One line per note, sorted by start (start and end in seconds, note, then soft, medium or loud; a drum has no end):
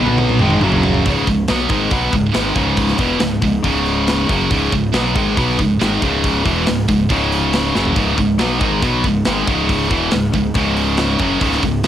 0.00 0.40 B1 medium
0.00 0.39 B2 medium
0.00 0.40 F#3 medium
0.00 0.41 B3 loud
0.07 mid tom medium
0.18 mid tom medium
0.29 mid tom medium
0.39 0.62 G#1 medium
0.39 0.62 G#2 medium
0.39 0.63 D#3 medium
0.39 0.64 G#3 loud
0.39 mid tom medium
0.50 mid tom medium
0.61 1.03 F#1 loud
0.61 1.05 F#2 medium
0.61 1.06 C#3 loud
0.61 1.06 F#3 loud
0.61 mid tom loud
0.72 floor tom medium
0.83 floor tom loud
0.94 floor tom medium
1.06 1.26 C#1 medium
1.06 1.27 C#2 medium
1.06 1.27 G#2 medium
1.06 1.27 C#3 loud
1.06 kick medium
1.06 open hi-hat medium
1.27 1.47 C#1 medium
1.27 1.45 C#2 medium
1.27 1.45 G#2 medium
1.27 kick medium
1.27 open hi-hat medium
1.48 1.70 B1 medium
1.48 1.68 B2 medium
1.48 1.69 F#3 medium
1.48 1.69 B3 loud
1.48 snare loud
1.48 open hi-hat medium
1.69 1.91 G#1 medium
1.69 1.90 G#2 medium
1.69 1.91 D#3 medium
1.69 1.91 G#3 medium
1.69 kick loud
1.69 open hi-hat medium
1.91 2.12 B1 medium
1.91 2.12 B2 medium
1.91 2.12 F#3 medium
1.91 2.13 B3 loud
1.91 kick loud
1.91 open hi-hat medium
2.12 2.33 C#1 medium
2.12 2.30 C#2 medium
2.12 2.30 G#2 medium
2.12 kick medium
2.12 open hi-hat medium
2.33 2.55 G#1 medium
2.33 2.55 G#2 medium
2.33 2.56 D#3 medium
2.33 2.56 G#3 loud
2.33 snare loud
2.33 open hi-hat medium
2.55 2.97 C#1 medium
2.55 2.97 C#2 medium
2.55 2.98 G#2 medium
2.55 2.98 C#3 medium
2.55 kick loud
2.55 open hi-hat medium
2.77 kick loud
2.77 open hi-hat medium
2.88 snare soft
2.98 3.19 E1 medium
2.98 3.19 E2 medium
2.98 3.19 B2 medium
2.98 3.20 E3 medium
2.98 kick loud
2.98 open hi-hat medium
3.19 3.41 C#1 medium
3.19 3.38 C#2 medium
3.19 3.38 G#2 medium
3.19 snare loud
3.19 open hi-hat medium
3.41 3.63 C#1 medium
3.41 3.60 C#2 medium
3.41 3.60 G#2 medium
3.41 kick medium
3.41 open hi-hat medium
3.62 4.26 C#1 medium
3.62 4.27 C#2 medium
3.62 4.28 G#2 loud
3.62 4.27 C#3 medium
3.62 kick loud
3.62 open hi-hat medium
3.86 open hi-hat medium
4.07 snare loud
4.07 open hi-hat medium
4.28 4.50 F#1 medium
4.28 4.50 F#2 medium
4.28 4.50 C#3 medium
4.28 4.51 F#3 loud
4.28 kick medium
4.28 open hi-hat medium
4.51 4.72 C#1 medium
4.51 4.71 C#2 medium
4.51 4.71 G#2 loud
4.51 4.73 C#3 loud
4.51 kick loud
4.51 open hi-hat medium
4.72 4.93 C#1 medium
4.72 4.90 C#2 medium
4.72 4.90 G#2 medium
4.72 kick medium
4.72 open hi-hat medium
4.93 5.15 B1 medium
4.93 5.14 B2 medium
4.93 5.15 F#3 medium
4.93 5.16 B3 medium
4.93 snare loud
4.93 open hi-hat medium
5.15 5.36 G#1 loud
5.15 5.36 G#2 medium
5.15 5.37 D#3 medium
5.15 5.37 G#3 loud
5.15 kick loud
5.15 open hi-hat medium
5.37 5.58 B1 medium
5.37 5.58 B2 medium
5.37 5.59 F#3 medium
5.37 5.59 B3 loud
5.37 kick loud
5.37 open hi-hat medium
5.59 5.79 C#1 medium
5.59 5.77 C#2 medium
5.59 5.77 G#2 medium
5.59 kick medium
5.59 open hi-hat medium
5.81 6.01 G#1 loud
5.81 6.01 G#2 medium
5.81 6.02 D#3 loud
5.81 6.03 G#3 loud
5.81 snare loud
5.81 open hi-hat medium
6.02 6.43 C#1 medium
6.02 6.44 C#2 medium
6.02 6.44 G#2 medium
6.02 6.45 C#3 loud
6.02 kick loud
6.02 open hi-hat medium
6.24 kick loud
6.24 open hi-hat medium
6.44 6.66 E1 medium
6.44 6.66 E2 medium
6.44 6.66 B2 medium
6.44 6.67 E3 medium
6.44 kick loud
6.44 open hi-hat medium
6.66 6.88 C#1 medium
6.66 6.84 C#2 medium
6.66 6.85 G#2 medium
6.66 snare loud
6.66 open hi-hat medium
6.89 7.09 C#1 medium
6.89 7.06 C#2 medium
6.89 7.07 G#2 medium
6.89 kick medium
6.89 open hi-hat medium
7.10 7.71 C#1 medium
7.10 7.73 C#2 medium
7.10 7.74 G#2 loud
7.10 7.73 C#3 loud
7.10 kick loud
7.10 open hi-hat medium
7.32 open hi-hat medium
7.53 snare loud
7.53 open hi-hat medium
7.74 7.95 F#1 medium
7.74 7.96 F#2 medium
7.74 7.96 C#3 medium
7.74 7.96 F#3 loud
7.74 snare medium
7.85 floor tom medium
7.96 8.17 C#1 medium
7.96 8.16 C#2 medium
7.96 8.16 G#2 medium
7.96 8.18 C#3 medium
7.96 kick loud
7.96 open hi-hat medium
8.17 8.38 C#1 medium
8.17 8.35 C#2 medium
8.17 8.35 G#2 medium
8.17 kick medium
8.17 open hi-hat medium
8.38 8.60 B1 loud
8.38 8.58 B2 medium
8.38 8.59 F#3 medium
8.38 8.59 B3 medium
8.38 snare loud
8.38 open hi-hat medium
8.58 8.82 G#1 medium
8.58 8.81 G#2 medium
8.58 8.82 D#3 medium
8.58 8.82 G#3 loud
8.58 kick loud
8.58 open hi-hat medium
8.82 9.03 B1 medium
8.82 9.04 B2 medium
8.82 9.04 F#3 medium
8.82 9.04 B3 loud
8.82 kick loud
8.82 open hi-hat medium
9.04 9.25 C#1 medium
9.04 9.22 C#2 medium
9.04 9.22 G#2 medium
9.04 kick medium
9.04 open hi-hat medium
9.25 9.47 G#1 medium
9.25 9.46 G#2 medium
9.25 9.47 D#3 loud
9.25 9.47 G#3 loud
9.25 snare loud
9.25 open hi-hat medium
9.47 9.88 C#1 medium
9.47 9.89 C#2 medium
9.47 9.89 G#2 medium
9.47 9.90 C#3 loud
9.47 kick loud
9.47 open hi-hat medium
9.69 kick loud
9.69 open hi-hat medium
9.89 10.11 E1 loud
9.89 10.10 E2 medium
9.89 10.10 B2 medium
9.89 10.12 E3 medium
9.89 kick loud
9.89 open hi-hat medium
10.10 10.33 C#1 medium
10.10 10.29 C#2 medium
10.10 10.29 G#2 medium
10.10 snare loud
10.10 open hi-hat medium
10.32 10.54 C#1 medium
10.32 10.50 C#2 medium
10.32 10.51 G#2 medium
10.32 kick medium
10.32 open hi-hat medium
10.54 11.16 C#1 medium
10.54 11.18 C#2 medium
10.54 11.19 G#2 loud
10.54 11.18 C#3 loud
10.54 kick loud
10.54 open hi-hat medium
10.77 open hi-hat medium
10.97 snare loud
10.97 open hi-hat medium
11.19 11.40 F#1 medium
11.19 11.40 F#2 medium
11.19 11.40 C#3 medium
11.19 11.41 F#3 medium
11.19 kick loud
11.19 open hi-hat medium
11.40 11.61 C#1 medium
11.40 11.62 C#2 medium
11.40 11.61 G#2 loud
11.40 11.62 C#3 loud
11.40 kick loud
11.40 open hi-hat medium
11.52 snare soft
11.62 11.83 C#1 medium
11.62 11.80 C#2 medium
11.62 11.80 G#2 medium
11.62 kick medium
11.62 open hi-hat medium
11.84 11.87 B2 medium
11.84 snare loud
11.84 open hi-hat medium